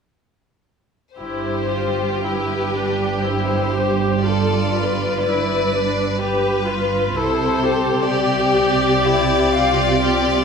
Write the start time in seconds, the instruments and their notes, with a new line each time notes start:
1.17 double bass section G1, cello section G2, viola section E4, violin section G4 C5
1.71 viola section F4
2.23 viola section E4, violin section B4
2.74 viola section D4
3.24 viola section E4, violin section C5
3.74 viola section G4
4.24 viola section F4, violin section A4 D5
4.75 violin section B4
5.23 viola section E4, violin section D5
5.72 viola section D4
6.19 viola section G4, violin section B4
6.67 viola section F4
7.15 double bass section C2, cello section C3, viola section E4, violin section A4 C5
7.63 viola section G4
8.08 violin section G4 D5
9.04 violin section E4
9.53 violin section F4
10.01 viola section F4, violin section G4